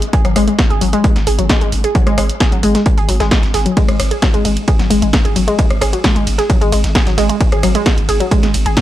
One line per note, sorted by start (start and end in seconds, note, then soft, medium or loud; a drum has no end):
0.02 closed hi-hat medium
0.13 0.24 G#4 medium
0.13 kick loud
0.13 closed hi-hat medium
0.25 0.35 G#1 medium
0.25 0.29 F#3 medium
0.25 cross-stick medium
0.25 closed hi-hat medium
0.36 0.47 G#1 loud
0.36 0.46 G#3 loud
0.36 cross-stick medium
0.36 closed hi-hat medium
0.36 open hi-hat loud
0.48 0.54 G#3 medium
0.48 closed hi-hat medium
0.59 kick loud
0.59 snare loud
0.59 closed hi-hat medium
0.70 0.81 G#1 medium
0.70 0.80 G#4 medium
0.70 closed hi-hat medium
0.81 0.93 G#1 loud
0.81 0.86 F#3 medium
0.81 closed hi-hat medium
0.81 open hi-hat loud
0.93 1.03 G#3 loud
0.93 closed hi-hat medium
1.04 1.11 G#3 medium
1.04 kick loud
1.04 closed hi-hat medium
1.16 1.26 G#1 medium
1.16 snare medium
1.16 snare soft
1.16 closed hi-hat medium
1.27 1.38 G#1 loud
1.27 1.37 G#4 medium
1.27 closed hi-hat medium
1.27 open hi-hat loud
1.38 1.49 G#1 medium
1.38 1.42 F#3 medium
1.38 closed hi-hat medium
1.49 1.60 G#3 loud
1.49 kick loud
1.49 snare loud
1.49 closed hi-hat medium
1.61 1.72 G#1 medium
1.61 1.68 G#3 medium
1.61 closed hi-hat medium
1.72 1.84 G#1 loud
1.72 closed hi-hat medium
1.72 open hi-hat loud
1.84 1.94 G#4 medium
1.84 closed hi-hat medium
1.95 1.99 F#3 medium
1.95 kick loud
1.95 closed hi-hat medium
2.07 2.17 G#1 medium
2.07 2.17 G#3 loud
2.07 cross-stick medium
2.07 closed hi-hat medium
2.18 2.29 G#1 loud
2.18 2.25 G#3 medium
2.18 cross-stick loud
2.18 closed hi-hat medium
2.18 open hi-hat loud
2.29 closed hi-hat medium
2.40 2.51 G#4 medium
2.40 kick loud
2.40 snare loud
2.40 closed hi-hat medium
2.52 2.63 G#1 medium
2.52 2.56 F#3 medium
2.52 closed hi-hat medium
2.63 2.75 G#1 loud
2.63 2.74 G#3 loud
2.63 closed hi-hat medium
2.63 open hi-hat loud
2.75 2.81 G#3 medium
2.75 snare soft
2.75 closed hi-hat medium
2.86 kick loud
2.86 closed hi-hat medium
2.97 3.08 G#1 medium
2.97 3.08 G#4 medium
2.97 closed hi-hat soft
2.97 closed hi-hat medium
3.09 3.20 G#1 loud
3.09 3.13 F#3 medium
3.09 closed hi-hat medium
3.09 open hi-hat loud
3.20 3.31 G#1 medium
3.20 3.30 G#3 loud
3.20 snare medium
3.20 closed hi-hat medium
3.31 3.38 G#3 medium
3.31 kick loud
3.31 snare loud
3.31 closed hi-hat medium
3.43 3.54 G#1 medium
3.43 snare medium
3.43 closed hi-hat medium
3.54 3.66 G#1 loud
3.54 3.65 G#4 medium
3.54 snare medium
3.54 closed hi-hat medium
3.54 open hi-hat loud
3.66 3.70 F#3 medium
3.66 closed hi-hat medium
3.77 3.87 G#3 loud
3.77 kick loud
3.77 closed hi-hat medium
3.77 ride medium
3.88 3.99 G#1 medium
3.88 3.95 G#3 medium
3.88 cross-stick medium
3.88 closed hi-hat medium
3.88 ride medium
4.00 4.11 G#1 loud
4.00 cross-stick loud
4.00 closed hi-hat medium
4.00 open hi-hat loud
4.00 ride medium
4.11 4.21 G#4 medium
4.11 closed hi-hat medium
4.11 ride medium
4.22 4.26 F#3 medium
4.22 kick loud
4.22 snare loud
4.22 closed hi-hat medium
4.22 ride medium
4.34 4.45 G#1 medium
4.34 4.44 G#3 loud
4.34 closed hi-hat soft
4.34 ride medium
4.45 4.57 G#1 loud
4.45 4.52 G#3 medium
4.45 closed hi-hat medium
4.45 open hi-hat loud
4.45 ride medium
4.57 closed hi-hat medium
4.57 ride medium
4.68 4.78 G#4 medium
4.68 kick loud
4.68 closed hi-hat medium
4.68 ride medium
4.79 4.90 G#1 medium
4.79 4.83 F#3 medium
4.79 snare medium
4.79 snare soft
4.79 closed hi-hat medium
4.79 ride medium
4.90 5.02 G#1 loud
4.90 5.01 G#3 loud
4.90 closed hi-hat medium
4.90 open hi-hat loud
4.90 ride medium
5.02 5.13 G#1 medium
5.02 5.09 G#3 medium
5.02 closed hi-hat medium
5.02 ride medium
5.13 kick loud
5.13 snare loud
5.13 closed hi-hat medium
5.13 ride medium
5.25 5.36 G#1 medium
5.25 5.35 G#4 medium
5.25 closed hi-hat medium
5.25 ride medium
5.36 5.47 G#1 loud
5.36 5.40 F#3 medium
5.36 closed hi-hat medium
5.36 open hi-hat medium
5.36 ride medium
5.48 5.58 G#3 loud
5.48 closed hi-hat medium
5.48 ride medium
5.59 5.66 G#3 medium
5.59 kick loud
5.59 closed hi-hat medium
5.59 ride medium
5.70 5.81 G#1 medium
5.70 cross-stick medium
5.70 closed hi-hat medium
5.70 ride medium
5.81 5.93 G#1 loud
5.81 5.92 G#4 medium
5.81 cross-stick loud
5.81 closed hi-hat medium
5.81 open hi-hat loud
5.81 ride medium
5.93 5.97 F#3 medium
5.93 closed hi-hat medium
5.93 ride medium
6.04 6.15 G#3 loud
6.04 kick loud
6.04 snare loud
6.04 closed hi-hat medium
6.04 ride medium
6.16 6.26 G#1 medium
6.16 6.22 G#3 medium
6.16 closed hi-hat soft
6.16 ride medium
6.27 6.38 G#1 loud
6.27 closed hi-hat medium
6.27 open hi-hat medium
6.27 ride medium
6.38 6.48 G#4 medium
6.38 snare soft
6.38 closed hi-hat medium
6.38 ride medium
6.50 6.54 F#3 medium
6.50 kick loud
6.50 closed hi-hat medium
6.50 ride medium
6.61 6.72 G#1 medium
6.61 6.71 G#3 loud
6.61 closed hi-hat soft
6.61 closed hi-hat medium
6.61 ride medium
6.72 6.83 G#1 loud
6.72 6.79 G#3 medium
6.72 closed hi-hat medium
6.72 open hi-hat loud
6.72 ride medium
6.84 6.95 G#1 medium
6.84 snare medium
6.84 closed hi-hat medium
6.84 ride medium
6.95 7.06 G#4 medium
6.95 kick loud
6.95 snare loud
6.95 closed hi-hat medium
6.95 ride medium
7.07 7.17 G#1 medium
7.07 7.11 F#3 medium
7.07 snare medium
7.07 closed hi-hat medium
7.07 ride medium
7.18 7.29 G#1 loud
7.18 7.28 G#3 loud
7.18 snare medium
7.18 closed hi-hat medium
7.18 open hi-hat medium
7.18 ride medium
7.29 7.36 G#3 medium
7.29 closed hi-hat medium
7.29 ride medium
7.41 kick loud
7.41 closed hi-hat medium
7.41 ride medium
7.52 7.63 G#1 medium
7.52 7.62 G#4 medium
7.52 cross-stick medium
7.52 closed hi-hat medium
7.52 ride medium
7.63 7.75 G#1 loud
7.63 7.67 F#3 medium
7.63 cross-stick loud
7.63 closed hi-hat medium
7.63 open hi-hat loud
7.63 ride medium
7.75 7.85 G#3 loud
7.75 closed hi-hat medium
7.75 ride medium
7.86 7.93 G#3 medium
7.86 kick loud
7.86 snare loud
7.86 closed hi-hat medium
7.86 ride medium
7.98 8.08 G#1 medium
7.98 closed hi-hat medium
7.98 ride medium
8.09 8.20 G#1 loud
8.09 8.19 G#4 medium
8.09 closed hi-hat medium
8.09 open hi-hat medium
8.09 ride medium
8.20 8.24 F#3 medium
8.20 closed hi-hat medium
8.20 ride medium
8.31 8.42 G#3 loud
8.31 kick loud
8.31 closed hi-hat medium
8.31 ride medium
8.43 8.54 G#1 medium
8.43 8.50 G#3 medium
8.43 snare medium
8.43 snare soft
8.43 closed hi-hat medium
8.43 ride medium
8.54 8.65 G#1 loud
8.54 closed hi-hat medium
8.54 open hi-hat loud
8.54 ride medium
8.66 8.77 G#1 medium
8.66 8.76 G#4 medium
8.66 closed hi-hat medium
8.66 ride medium
8.77 8.81 F#3 medium
8.77 kick loud
8.77 snare loud
8.77 closed hi-hat medium
8.77 ride medium